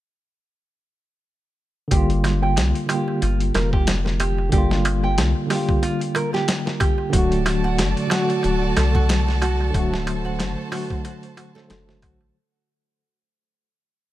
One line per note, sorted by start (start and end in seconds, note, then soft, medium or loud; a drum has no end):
1.88 2.59 G1 loud
1.88 2.84 D3 medium
1.88 2.86 G3 medium
1.88 2.09 G4 medium
1.88 kick loud
1.88 closed hi-hat medium
1.88 darbuka tek soft
1.94 2.87 A#3 medium
1.94 2.89 F4 loud
2.10 closed hi-hat soft
2.10 darbuka tek soft
2.24 snare soft
2.24 closed hi-hat medium
2.24 darbuka tek medium
2.42 2.56 G5 medium
2.42 darbuka tek soft
2.56 2.73 C2 loud
2.56 snare loud
2.56 closed hi-hat medium
2.56 darbuka tek soft
2.74 closed hi-hat soft
2.74 darbuka tek soft
2.86 4.47 D3 medium
2.86 4.49 G3 medium
2.86 3.20 G4 medium
2.86 closed hi-hat medium
2.86 darbuka tek medium
2.92 4.50 A#3 medium
2.92 4.52 F4 medium
3.08 darbuka tek soft
3.21 3.51 G1 medium
3.21 3.39 F4 medium
3.21 closed hi-hat medium
3.21 darbuka tek soft
3.40 closed hi-hat soft
3.40 darbuka tek soft
3.54 4.50 F1 medium
3.54 3.71 A#4 medium
3.54 snare medium
3.54 closed hi-hat medium
3.54 darbuka tek medium
3.73 3.87 G4 medium
3.73 kick medium
3.73 darbuka tek soft
3.87 snare loud
3.87 closed hi-hat medium
3.87 darbuka tek medium
4.05 snare soft
4.05 darbuka tek soft
4.20 4.51 G4 medium
4.20 closed hi-hat medium
4.20 darbuka tek medium
4.38 darbuka tek soft
4.49 5.20 G1 loud
4.49 5.45 D3 medium
4.49 5.47 G3 medium
4.49 4.70 G4 medium
4.49 kick loud
4.49 closed hi-hat medium
4.49 darbuka tek soft
4.55 5.48 A#3 medium
4.55 5.50 F4 loud
4.71 snare medium
4.71 darbuka tek soft
4.85 closed hi-hat medium
4.85 darbuka tek loud
5.04 5.17 G5 medium
5.04 darbuka tek soft
5.18 5.34 C2 loud
5.18 snare loud
5.18 closed hi-hat medium
5.18 darbuka tek medium
5.35 darbuka tek soft
5.47 7.08 D3 medium
5.47 7.10 G3 medium
5.47 5.81 G4 loud
5.47 open hi-hat medium
5.47 darbuka tek medium
5.51 7.11 A#3 medium
5.51 snare soft
5.56 7.13 F4 medium
5.69 kick medium
5.69 darbuka tek soft
5.82 6.00 F4 medium
5.82 closed hi-hat medium
5.82 darbuka tek medium
6.01 closed hi-hat soft
6.01 darbuka tek soft
6.15 6.32 A#4 medium
6.15 closed hi-hat medium
6.15 darbuka tek medium
6.33 6.47 G4 medium
6.33 snare soft
6.33 darbuka tek soft
6.48 snare loud
6.48 closed hi-hat medium
6.48 darbuka tek soft
6.66 snare soft
6.66 darbuka tek soft
6.80 7.12 G4 medium
6.80 kick loud
6.80 closed hi-hat medium
6.80 darbuka tek medium
6.98 darbuka tek soft
7.09 8.06 D3 medium
7.09 8.07 F#3 medium
7.09 12.31 F#4 medium
7.09 7.30 F#4 medium
7.09 12.31 A4 medium
7.09 9.71 D5 medium
7.09 12.31 A5 medium
7.09 kick loud
7.09 closed hi-hat medium
7.09 darbuka tek medium
7.14 7.81 D1 loud
7.14 8.09 A3 medium
7.18 8.10 F#4 loud
7.31 closed hi-hat soft
7.31 darbuka tek soft
7.46 snare soft
7.46 closed hi-hat medium
7.46 darbuka tek loud
7.64 7.78 F#5 medium
7.64 darbuka tek soft
7.78 7.95 F#1 loud
7.78 snare loud
7.78 closed hi-hat medium
7.78 darbuka tek soft
7.97 closed hi-hat soft
7.97 darbuka tek soft
8.07 9.69 D3 medium
8.07 9.70 F#3 medium
8.07 darbuka tek medium
8.11 9.72 A3 medium
8.11 8.42 F#4 loud
8.11 snare loud
8.11 closed hi-hat medium
8.16 9.73 F#4 medium
8.29 closed hi-hat soft
8.29 darbuka tek soft
8.43 8.73 D1 medium
8.43 8.61 F#4 medium
8.43 closed hi-hat medium
8.43 darbuka tek soft
8.62 darbuka tek soft
8.77 9.72 C2 medium
8.77 8.93 A4 medium
8.77 snare medium
8.77 closed hi-hat medium
8.77 darbuka tek medium
8.95 9.08 F#4 medium
8.95 kick medium
8.95 darbuka tek soft
9.09 snare loud
9.09 closed hi-hat medium
9.09 darbuka tek soft
9.27 snare soft
9.27 darbuka tek soft
9.42 9.73 F#4 medium
9.42 closed hi-hat medium
9.42 darbuka tek medium
9.61 darbuka tek soft
9.70 10.67 D3 medium
9.70 10.68 F#3 medium
9.70 12.32 C5 medium
9.74 10.42 D1 medium
9.74 10.69 A3 medium
9.74 9.92 F#4 medium
9.74 kick loud
9.74 closed hi-hat medium
9.74 darbuka tek medium
9.79 10.71 F#4 loud
9.93 snare medium
9.93 darbuka tek soft
10.07 closed hi-hat medium
10.07 darbuka tek medium
10.25 10.39 F#5 medium
10.25 darbuka tek soft
10.39 10.56 F#1 medium
10.39 snare loud
10.39 closed hi-hat medium
10.39 darbuka tek medium
10.58 darbuka tek soft
10.68 11.50 D3 medium
10.68 11.52 F#3 medium
10.68 11.03 F#4 medium
10.68 open hi-hat medium
10.68 darbuka tek loud
10.74 11.53 A3 medium
10.74 11.55 F#4 medium
10.90 kick loud
10.90 darbuka tek soft
11.05 11.22 F#4 medium
11.05 closed hi-hat medium
11.05 darbuka tek medium
11.23 closed hi-hat soft
11.23 darbuka tek soft
11.37 11.54 F#4 medium
11.37 closed hi-hat medium
11.37 darbuka tek medium
11.54 11.66 D3 medium
11.54 11.66 F#3 medium
11.54 11.67 A3 medium
11.54 11.63 A4 loud
11.54 snare soft
11.54 darbuka tek soft
11.58 11.68 C5 medium
11.69 12.04 F#1 medium
11.69 11.86 D3 medium
11.69 11.86 F#3 medium
11.69 11.87 A3 medium
11.69 snare loud
11.69 closed hi-hat medium
11.69 darbuka tek medium
11.73 11.88 A4 medium
11.89 snare soft
11.89 darbuka tek soft
12.02 12.32 A1 medium
12.02 12.19 F#4 medium
12.02 kick loud
12.02 closed hi-hat medium
12.02 darbuka tek medium
12.21 darbuka tek soft